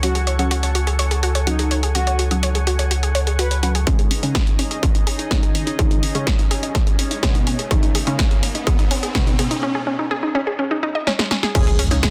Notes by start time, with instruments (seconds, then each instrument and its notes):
Already playing: analog synth bass C#2, analog synth pad A4 F#5 G#5 C#6
0.03 synth stab F#3 C#4 F#4, synth arpeggio sound F#4, analog polysynth F#4, closed hi-hat
0.15 synth arpeggio sound G#4, closed hi-hat
0.27 synth arpeggio sound C#5, closed hi-hat
0.39 synth stab F#3 C#4 F#4, synth arpeggio sound G#4, closed hi-hat
0.51 synth arpeggio sound F#4, closed hi-hat
0.63 synth arpeggio sound C#5, closed hi-hat
0.75 synth arpeggio sound F#4, closed hi-hat
0.87 synth arpeggio sound G#4, closed hi-hat
0.99 synth arpeggio sound C#5, closed hi-hat
1.11 synth arpeggio sound G#4, closed hi-hat
1.23 synth arpeggio sound F#4, closed hi-hat
1.35 synth arpeggio sound C#5, closed hi-hat
1.47 synth stab F#3 C#4 F#4, analog polysynth D#4, synth arpeggio sound F#4, closed hi-hat
1.59 synth arpeggio sound G#4, closed hi-hat
1.71 synth arpeggio sound C#5, closed hi-hat
1.83 synth arpeggio sound G#4, closed hi-hat
1.95 synth stab F#3 C#4 F#4, synth arpeggio sound F#4, analog polysynth F#4, closed hi-hat
2.07 synth arpeggio sound C#5, closed hi-hat
2.19 synth arpeggio sound F#4, closed hi-hat
2.31 synth stab F#3 C#4 F#4, synth arpeggio sound G#4, closed hi-hat
2.43 synth arpeggio sound C#5, closed hi-hat
2.55 synth arpeggio sound G#4, closed hi-hat
2.67 synth arpeggio sound F#4, closed hi-hat
2.79 synth arpeggio sound C#5, closed hi-hat
2.91 synth arpeggio sound F#4, closed hi-hat
3.03 synth arpeggio sound G#4, closed hi-hat
3.15 synth arpeggio sound C#5, closed hi-hat
3.27 synth arpeggio sound G#4, closed hi-hat
3.39 synth arpeggio sound F#4, analog polysynth B4, closed hi-hat
3.51 synth arpeggio sound C#5, closed hi-hat
3.63 synth stab F#3 C#4 F#4, synth arpeggio sound F#4, closed hi-hat
3.75 synth arpeggio sound G#4, closed hi-hat
3.87 synth stab C#3 G#3 C#4, analog polysynth G#3 G#4, synth arpeggio sound C#4, analog synth pad C#4 D#4 G#4 D#5, kick, closed hi-hat, riser
3.99 synth arpeggio sound G#4, closed hi-hat
4.11 synth arpeggio sound C#4, open hi-hat
4.23 synth stab C#3 G#3 C#4, synth arpeggio sound D#4, closed hi-hat
4.35 synth arpeggio sound G#4, kick, snare, closed hi-hat
4.47 synth arpeggio sound D#4, closed hi-hat
4.59 synth arpeggio sound C#4, open hi-hat
4.71 synth arpeggio sound G#4, closed hi-hat
4.83 synth arpeggio sound C#4, kick, closed hi-hat
4.95 synth arpeggio sound D#4, closed hi-hat
5.07 synth arpeggio sound G#4, open hi-hat
5.19 synth arpeggio sound D#4, closed hi-hat
5.31 synth stab C#3 G#3 C#4, analog polysynth D#3 D#4, synth arpeggio sound C#4, kick, snare, closed hi-hat
5.43 synth arpeggio sound G#4, closed hi-hat
5.55 synth arpeggio sound C#4, open hi-hat
5.67 synth arpeggio sound D#4, closed hi-hat
5.79 synth stab C#3 G#3 C#4, analog polysynth D#3 D#4, synth arpeggio sound G#4, kick, closed hi-hat
5.91 synth arpeggio sound D#4, closed hi-hat
6.03 synth arpeggio sound C#4, open hi-hat
6.15 synth stab C#3 G#3 C#4, synth arpeggio sound G#4, closed hi-hat
6.27 synth arpeggio sound C#4, kick, snare, closed hi-hat
6.39 synth arpeggio sound D#4, closed hi-hat
6.51 synth arpeggio sound G#4, open hi-hat
6.63 synth arpeggio sound D#4, closed hi-hat
6.75 synth arpeggio sound C#4, kick, snare, closed hi-hat
6.87 synth arpeggio sound G#4, closed hi-hat
6.99 synth arpeggio sound C#4, open hi-hat
7.11 synth arpeggio sound D#4, closed hi-hat
7.23 analog polysynth B2 B3, synth stab C#3 G#3 C#4, synth arpeggio sound G#4, kick, snare, closed hi-hat
7.35 synth arpeggio sound D#4, closed hi-hat
7.47 synth arpeggio sound C#4, open hi-hat
7.59 synth arpeggio sound G#4, closed hi-hat
7.71 synth stab C#3 G#3 C#4, analog polysynth D#3 D#4, synth arpeggio sound C#4, kick, closed hi-hat
7.83 synth arpeggio sound D#4, closed hi-hat
7.95 synth arpeggio sound G#4, open hi-hat
8.07 synth stab C#3 G#3 C#4, synth arpeggio sound D#4, closed hi-hat
8.19 synth arpeggio sound C#4, kick, snare, closed hi-hat
8.31 synth arpeggio sound G#4, closed hi-hat
8.43 synth arpeggio sound C#4, open hi-hat
8.55 synth arpeggio sound D#4, closed hi-hat
8.67 synth arpeggio sound G#4, kick, closed hi-hat
8.79 synth arpeggio sound D#4, closed hi-hat
8.91 synth arpeggio sound C#4, open hi-hat
9.03 synth arpeggio sound G#4, closed hi-hat
9.15 analog polysynth B2 B3, synth stab C#3 G#3 C#4, synth arpeggio sound C#4, kick, snare, closed hi-hat
9.27 synth arpeggio sound D#4, closed hi-hat
9.39 synth arpeggio sound G#4, open hi-hat
9.51 synth arpeggio sound D#4, closed hi-hat
9.63 synth arpeggio sound C#4
9.75 synth arpeggio sound G#4
9.87 synth arpeggio sound C#4
9.99 synth arpeggio sound D#4
10.11 synth arpeggio sound G#4
10.23 synth arpeggio sound D#4
10.35 synth arpeggio sound C#4
10.47 synth arpeggio sound G#4
10.59 synth arpeggio sound C#4
10.71 synth arpeggio sound D#4
10.83 synth arpeggio sound D#4
10.95 synth arpeggio sound D#5
11.07 synth arpeggio sound C#4, snare
11.19 synth arpeggio sound G#3, snare
11.31 synth arpeggio sound C#4, snare
11.43 synth arpeggio sound G#4, snare
11.55 synth stab C#3 G#3 C#4, analog polysynth G#3 G#4, synth arpeggio sound C#4, analog synth pad G#4 C#5 D#5 C#6, kick, closed hi-hat, crash, impact
11.67 analog synth bass C#2, synth arpeggio sound G#4, closed hi-hat
11.79 analog synth bass C#2, synth arpeggio sound C#4, open hi-hat
11.91 analog synth bass C#2, synth stab C#3 G#3 C#4, synth arpeggio sound D#4, closed hi-hat
12.03 synth arpeggio sound G#4, kick, snare, closed hi-hat